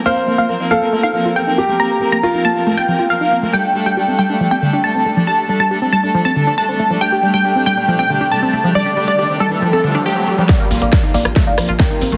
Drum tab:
HH |--x-------x---xx|x-xx--xxx-xxx-xx|--xxx-xxx-xxx-xx|x-xxx-xxx-xxx-xx|
SD |----------------|----------------|----------------|----------------|
BD |----------------|----------------|----------------|----------------|

HH |x-xxx-xxx-xxx-xx|x-xxx-xxx-xxx-xx|x-oxx-oxx-oxx-ox|
SD |----------------|----------------|o---o--ro-r-o---|
BD |----------------|----------------|o---o---o---o---|